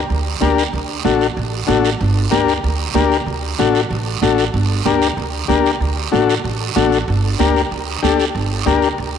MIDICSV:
0, 0, Header, 1, 4, 480
1, 0, Start_track
1, 0, Key_signature, -2, "minor"
1, 0, Tempo, 317125
1, 1109, Time_signature, 4, 2, 24, 8
1, 13899, End_track
2, 0, Start_track
2, 0, Title_t, "Transistor combo organ"
2, 0, Program_c, 0, 18
2, 616, Note_on_c, 0, 62, 76
2, 628, Note_on_c, 0, 67, 67
2, 636, Note_on_c, 0, 70, 85
2, 958, Note_off_c, 0, 62, 0
2, 964, Note_off_c, 0, 67, 0
2, 968, Note_off_c, 0, 70, 0
2, 1581, Note_on_c, 0, 62, 78
2, 1583, Note_on_c, 0, 66, 68
2, 1589, Note_on_c, 0, 69, 83
2, 1920, Note_off_c, 0, 62, 0
2, 1921, Note_off_c, 0, 66, 0
2, 1924, Note_off_c, 0, 69, 0
2, 2526, Note_on_c, 0, 62, 78
2, 2535, Note_on_c, 0, 66, 73
2, 2538, Note_on_c, 0, 69, 87
2, 2873, Note_off_c, 0, 62, 0
2, 2877, Note_off_c, 0, 66, 0
2, 2879, Note_off_c, 0, 69, 0
2, 3490, Note_on_c, 0, 62, 77
2, 3497, Note_on_c, 0, 67, 71
2, 3500, Note_on_c, 0, 70, 85
2, 3835, Note_off_c, 0, 62, 0
2, 3839, Note_off_c, 0, 67, 0
2, 3840, Note_off_c, 0, 70, 0
2, 4459, Note_on_c, 0, 62, 81
2, 4468, Note_on_c, 0, 67, 67
2, 4470, Note_on_c, 0, 70, 86
2, 4800, Note_off_c, 0, 62, 0
2, 4805, Note_off_c, 0, 67, 0
2, 4805, Note_off_c, 0, 70, 0
2, 5429, Note_on_c, 0, 62, 80
2, 5437, Note_on_c, 0, 66, 73
2, 5446, Note_on_c, 0, 69, 84
2, 5766, Note_off_c, 0, 62, 0
2, 5770, Note_off_c, 0, 66, 0
2, 5774, Note_off_c, 0, 69, 0
2, 6389, Note_on_c, 0, 62, 72
2, 6400, Note_on_c, 0, 66, 74
2, 6400, Note_on_c, 0, 69, 82
2, 6727, Note_off_c, 0, 62, 0
2, 6732, Note_off_c, 0, 66, 0
2, 6732, Note_off_c, 0, 69, 0
2, 7349, Note_on_c, 0, 62, 80
2, 7350, Note_on_c, 0, 67, 68
2, 7356, Note_on_c, 0, 70, 81
2, 7687, Note_off_c, 0, 62, 0
2, 7688, Note_off_c, 0, 67, 0
2, 7691, Note_off_c, 0, 70, 0
2, 8299, Note_on_c, 0, 62, 82
2, 8300, Note_on_c, 0, 67, 70
2, 8311, Note_on_c, 0, 70, 87
2, 8643, Note_off_c, 0, 62, 0
2, 8644, Note_off_c, 0, 67, 0
2, 8649, Note_off_c, 0, 70, 0
2, 9257, Note_on_c, 0, 62, 74
2, 9263, Note_on_c, 0, 66, 69
2, 9266, Note_on_c, 0, 69, 85
2, 9602, Note_off_c, 0, 62, 0
2, 9606, Note_off_c, 0, 66, 0
2, 9607, Note_off_c, 0, 69, 0
2, 10230, Note_on_c, 0, 62, 76
2, 10231, Note_on_c, 0, 66, 72
2, 10238, Note_on_c, 0, 69, 88
2, 10569, Note_off_c, 0, 62, 0
2, 10569, Note_off_c, 0, 66, 0
2, 10573, Note_off_c, 0, 69, 0
2, 11182, Note_on_c, 0, 62, 76
2, 11190, Note_on_c, 0, 67, 77
2, 11199, Note_on_c, 0, 70, 87
2, 11525, Note_off_c, 0, 62, 0
2, 11529, Note_off_c, 0, 67, 0
2, 11533, Note_off_c, 0, 70, 0
2, 12148, Note_on_c, 0, 67, 71
2, 12149, Note_on_c, 0, 62, 77
2, 12158, Note_on_c, 0, 69, 88
2, 12487, Note_off_c, 0, 62, 0
2, 12487, Note_off_c, 0, 67, 0
2, 12492, Note_off_c, 0, 69, 0
2, 13106, Note_on_c, 0, 62, 78
2, 13113, Note_on_c, 0, 67, 72
2, 13121, Note_on_c, 0, 70, 88
2, 13445, Note_off_c, 0, 62, 0
2, 13449, Note_off_c, 0, 67, 0
2, 13453, Note_off_c, 0, 70, 0
2, 13899, End_track
3, 0, Start_track
3, 0, Title_t, "Upright bass"
3, 0, Program_c, 1, 32
3, 148, Note_on_c, 1, 38, 79
3, 532, Note_off_c, 1, 38, 0
3, 626, Note_on_c, 1, 38, 82
3, 1011, Note_off_c, 1, 38, 0
3, 1105, Note_on_c, 1, 38, 83
3, 1490, Note_off_c, 1, 38, 0
3, 1589, Note_on_c, 1, 33, 83
3, 1972, Note_off_c, 1, 33, 0
3, 2068, Note_on_c, 1, 33, 82
3, 2452, Note_off_c, 1, 33, 0
3, 2548, Note_on_c, 1, 33, 87
3, 2932, Note_off_c, 1, 33, 0
3, 3036, Note_on_c, 1, 31, 92
3, 3417, Note_off_c, 1, 31, 0
3, 3513, Note_on_c, 1, 38, 90
3, 3895, Note_off_c, 1, 38, 0
3, 3993, Note_on_c, 1, 38, 85
3, 4376, Note_off_c, 1, 38, 0
3, 4455, Note_on_c, 1, 38, 82
3, 4845, Note_off_c, 1, 38, 0
3, 4941, Note_on_c, 1, 38, 86
3, 5328, Note_off_c, 1, 38, 0
3, 5439, Note_on_c, 1, 33, 86
3, 5820, Note_off_c, 1, 33, 0
3, 5910, Note_on_c, 1, 33, 85
3, 6295, Note_off_c, 1, 33, 0
3, 6385, Note_on_c, 1, 33, 80
3, 6772, Note_off_c, 1, 33, 0
3, 6868, Note_on_c, 1, 31, 89
3, 7254, Note_off_c, 1, 31, 0
3, 7358, Note_on_c, 1, 38, 82
3, 7740, Note_off_c, 1, 38, 0
3, 7825, Note_on_c, 1, 38, 86
3, 8213, Note_off_c, 1, 38, 0
3, 8304, Note_on_c, 1, 38, 84
3, 8693, Note_off_c, 1, 38, 0
3, 8785, Note_on_c, 1, 38, 86
3, 9173, Note_off_c, 1, 38, 0
3, 9278, Note_on_c, 1, 33, 86
3, 9662, Note_off_c, 1, 33, 0
3, 9748, Note_on_c, 1, 33, 83
3, 10136, Note_off_c, 1, 33, 0
3, 10233, Note_on_c, 1, 33, 84
3, 10618, Note_off_c, 1, 33, 0
3, 10713, Note_on_c, 1, 31, 90
3, 11098, Note_off_c, 1, 31, 0
3, 11195, Note_on_c, 1, 38, 88
3, 11579, Note_off_c, 1, 38, 0
3, 11672, Note_on_c, 1, 38, 82
3, 12057, Note_off_c, 1, 38, 0
3, 12154, Note_on_c, 1, 38, 82
3, 12538, Note_off_c, 1, 38, 0
3, 12634, Note_on_c, 1, 31, 85
3, 13017, Note_off_c, 1, 31, 0
3, 13107, Note_on_c, 1, 38, 84
3, 13493, Note_off_c, 1, 38, 0
3, 13594, Note_on_c, 1, 38, 82
3, 13899, Note_off_c, 1, 38, 0
3, 13899, End_track
4, 0, Start_track
4, 0, Title_t, "Drums"
4, 153, Note_on_c, 9, 63, 32
4, 155, Note_on_c, 9, 74, 70
4, 305, Note_off_c, 9, 63, 0
4, 306, Note_off_c, 9, 74, 0
4, 631, Note_on_c, 9, 73, 67
4, 632, Note_on_c, 9, 63, 79
4, 782, Note_off_c, 9, 73, 0
4, 784, Note_off_c, 9, 63, 0
4, 882, Note_on_c, 9, 73, 66
4, 1034, Note_off_c, 9, 73, 0
4, 1114, Note_on_c, 9, 74, 65
4, 1117, Note_on_c, 9, 63, 33
4, 1265, Note_off_c, 9, 74, 0
4, 1268, Note_off_c, 9, 63, 0
4, 1585, Note_on_c, 9, 63, 77
4, 1596, Note_on_c, 9, 73, 65
4, 1736, Note_off_c, 9, 63, 0
4, 1747, Note_off_c, 9, 73, 0
4, 1834, Note_on_c, 9, 73, 66
4, 1985, Note_off_c, 9, 73, 0
4, 2070, Note_on_c, 9, 63, 34
4, 2077, Note_on_c, 9, 74, 65
4, 2221, Note_off_c, 9, 63, 0
4, 2228, Note_off_c, 9, 74, 0
4, 2549, Note_on_c, 9, 63, 72
4, 2555, Note_on_c, 9, 73, 71
4, 2700, Note_off_c, 9, 63, 0
4, 2706, Note_off_c, 9, 73, 0
4, 2793, Note_on_c, 9, 73, 68
4, 2944, Note_off_c, 9, 73, 0
4, 3034, Note_on_c, 9, 63, 33
4, 3036, Note_on_c, 9, 74, 65
4, 3186, Note_off_c, 9, 63, 0
4, 3188, Note_off_c, 9, 74, 0
4, 3509, Note_on_c, 9, 73, 68
4, 3516, Note_on_c, 9, 63, 73
4, 3660, Note_off_c, 9, 73, 0
4, 3667, Note_off_c, 9, 63, 0
4, 3760, Note_on_c, 9, 73, 61
4, 3912, Note_off_c, 9, 73, 0
4, 3995, Note_on_c, 9, 63, 33
4, 4001, Note_on_c, 9, 74, 67
4, 4146, Note_off_c, 9, 63, 0
4, 4152, Note_off_c, 9, 74, 0
4, 4470, Note_on_c, 9, 63, 79
4, 4484, Note_on_c, 9, 73, 68
4, 4621, Note_off_c, 9, 63, 0
4, 4635, Note_off_c, 9, 73, 0
4, 4720, Note_on_c, 9, 73, 65
4, 4872, Note_off_c, 9, 73, 0
4, 4954, Note_on_c, 9, 63, 35
4, 4970, Note_on_c, 9, 74, 66
4, 5106, Note_off_c, 9, 63, 0
4, 5122, Note_off_c, 9, 74, 0
4, 5435, Note_on_c, 9, 73, 66
4, 5438, Note_on_c, 9, 63, 71
4, 5586, Note_off_c, 9, 73, 0
4, 5590, Note_off_c, 9, 63, 0
4, 5678, Note_on_c, 9, 73, 63
4, 5829, Note_off_c, 9, 73, 0
4, 5916, Note_on_c, 9, 74, 64
4, 5924, Note_on_c, 9, 63, 34
4, 6067, Note_off_c, 9, 74, 0
4, 6075, Note_off_c, 9, 63, 0
4, 6395, Note_on_c, 9, 63, 74
4, 6396, Note_on_c, 9, 73, 64
4, 6546, Note_off_c, 9, 63, 0
4, 6548, Note_off_c, 9, 73, 0
4, 6633, Note_on_c, 9, 73, 68
4, 6784, Note_off_c, 9, 73, 0
4, 6872, Note_on_c, 9, 74, 61
4, 6883, Note_on_c, 9, 63, 35
4, 7024, Note_off_c, 9, 74, 0
4, 7034, Note_off_c, 9, 63, 0
4, 7347, Note_on_c, 9, 63, 71
4, 7355, Note_on_c, 9, 73, 67
4, 7499, Note_off_c, 9, 63, 0
4, 7506, Note_off_c, 9, 73, 0
4, 7593, Note_on_c, 9, 73, 68
4, 7745, Note_off_c, 9, 73, 0
4, 7837, Note_on_c, 9, 74, 64
4, 7839, Note_on_c, 9, 63, 34
4, 7988, Note_off_c, 9, 74, 0
4, 7990, Note_off_c, 9, 63, 0
4, 8316, Note_on_c, 9, 73, 69
4, 8317, Note_on_c, 9, 63, 78
4, 8468, Note_off_c, 9, 73, 0
4, 8469, Note_off_c, 9, 63, 0
4, 8566, Note_on_c, 9, 73, 63
4, 8717, Note_off_c, 9, 73, 0
4, 8794, Note_on_c, 9, 63, 31
4, 8809, Note_on_c, 9, 74, 62
4, 8946, Note_off_c, 9, 63, 0
4, 8960, Note_off_c, 9, 74, 0
4, 9276, Note_on_c, 9, 63, 73
4, 9286, Note_on_c, 9, 73, 67
4, 9427, Note_off_c, 9, 63, 0
4, 9437, Note_off_c, 9, 73, 0
4, 9526, Note_on_c, 9, 73, 66
4, 9678, Note_off_c, 9, 73, 0
4, 9758, Note_on_c, 9, 63, 33
4, 9768, Note_on_c, 9, 74, 69
4, 9910, Note_off_c, 9, 63, 0
4, 9919, Note_off_c, 9, 74, 0
4, 10238, Note_on_c, 9, 73, 69
4, 10242, Note_on_c, 9, 63, 82
4, 10389, Note_off_c, 9, 73, 0
4, 10393, Note_off_c, 9, 63, 0
4, 10480, Note_on_c, 9, 73, 69
4, 10631, Note_off_c, 9, 73, 0
4, 10714, Note_on_c, 9, 63, 34
4, 10717, Note_on_c, 9, 74, 64
4, 10865, Note_off_c, 9, 63, 0
4, 10868, Note_off_c, 9, 74, 0
4, 11203, Note_on_c, 9, 63, 75
4, 11204, Note_on_c, 9, 73, 67
4, 11354, Note_off_c, 9, 63, 0
4, 11355, Note_off_c, 9, 73, 0
4, 11447, Note_on_c, 9, 73, 64
4, 11599, Note_off_c, 9, 73, 0
4, 11685, Note_on_c, 9, 74, 63
4, 11690, Note_on_c, 9, 63, 32
4, 11836, Note_off_c, 9, 74, 0
4, 11842, Note_off_c, 9, 63, 0
4, 12168, Note_on_c, 9, 73, 70
4, 12174, Note_on_c, 9, 63, 74
4, 12319, Note_off_c, 9, 73, 0
4, 12325, Note_off_c, 9, 63, 0
4, 12405, Note_on_c, 9, 73, 68
4, 12556, Note_off_c, 9, 73, 0
4, 12647, Note_on_c, 9, 74, 61
4, 12648, Note_on_c, 9, 63, 34
4, 12799, Note_off_c, 9, 63, 0
4, 12799, Note_off_c, 9, 74, 0
4, 13120, Note_on_c, 9, 73, 68
4, 13122, Note_on_c, 9, 63, 74
4, 13271, Note_off_c, 9, 73, 0
4, 13273, Note_off_c, 9, 63, 0
4, 13354, Note_on_c, 9, 73, 65
4, 13506, Note_off_c, 9, 73, 0
4, 13595, Note_on_c, 9, 74, 66
4, 13601, Note_on_c, 9, 63, 33
4, 13746, Note_off_c, 9, 74, 0
4, 13753, Note_off_c, 9, 63, 0
4, 13899, End_track
0, 0, End_of_file